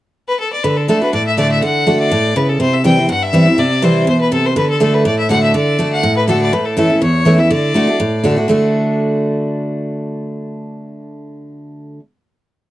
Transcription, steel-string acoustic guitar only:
0.64 D3
0.88 D3 A3 D4 F#4
1.02 D4 F#4
1.13 A2
1.37 D3 A3 D4 F#4
1.62 D3
1.86 D3 A3 D4 F#4
2.11 A2
2.36 C#3
2.60 C3
2.84 E3 G3 C4 E4
2.97 C4 E4
3.09 G2
3.33 E3 G3 C4 E4
3.46 C4 E4
3.58 C3
3.82 E3 G3 C4 E4
4.07 B2
4.32 C3
4.56 D3
4.80 D3 A3 D4 F#4
5.05 A2
5.29 D3 A3 D4 F#4
5.54 D3
5.78 D3 A3 D4 F#4
6.03 A2
6.28 D3 A3 D4 F#4
6.53 A2
6.77 E3 A3 C#4 E4
6.90 C#4 E4
7.02 E2
7.25 E3 A3 C#4 E4
7.38 C#4 E4
7.51 D3
7.74 D3 A3 D4 F#4
7.87 D4 F#4
8.00 A2
8.24 D3 A3 D4 F#4
8.36 D4 F#4
8.48 D3 A3 D4 F#4

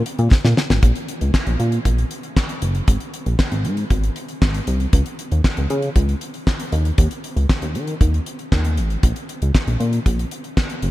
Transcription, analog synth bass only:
0.19 A#2
0.45 A#2
0.70 G#1
0.83 A#1
1.21 C#2
1.47 A#1
1.60 A#2
1.85 A#1
2.62 F#1
2.88 G#1
3.26 A#1
3.52 G#1
3.65 G#2
3.91 G#1
4.42 G#1
4.68 C2
4.93 C#2
5.32 D#2
5.57 C#2
5.70 C#3
5.96 C#2
6.72 D#2
6.98 D#2
7.36 C#2
7.62 D#2
7.75 D#3
8.01 D#2
8.52 D#2
8.78 G#1
9.03 A#1
9.42 C#2
9.67 A#1
9.80 A#2
10.06 A#1
10.83 F#1

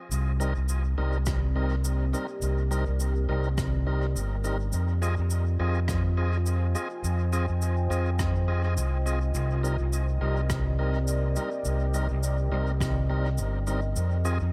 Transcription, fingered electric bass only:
0.11 C2
0.57 C2
0.98 C2
2.42 C2
2.88 C2
3.29 C2
4.16 G1
4.73 F2
5.19 F2
5.60 F2
7.04 F2
7.50 F2
7.91 F2
8.77 C2
9.35 C2
9.80 C2
10.21 C2
11.65 C2
12.11 C2
12.52 C2
13.39 G1
13.96 F2
14.42 F2

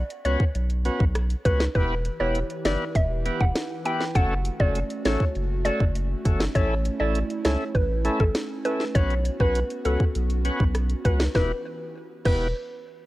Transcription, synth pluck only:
0.25 C#5
1.45 B4
1.75 B4
2.20 C#5
2.65 D5
2.96 E5
3.41 F#5
3.86 G5
4.16 F#5
4.60 D5
5.05 C#5
5.65 D5
6.55 C#5
7.00 D5
7.45 C#5
7.75 B4
8.20 A4
8.65 B4
8.95 C#5
9.40 B4
9.85 A4
11.05 B4
11.35 B4
12.25 B4

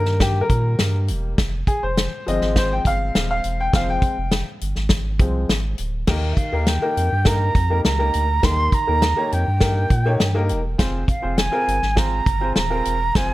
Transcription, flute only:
6.32 E5
6.38 F5
6.67 G5
7.27 A#5
7.85 A#5
8.45 C6
8.74 A#5
9.34 G5
11.09 F5
11.37 G#5
11.98 A#5
12.57 A#5
13.17 G#5

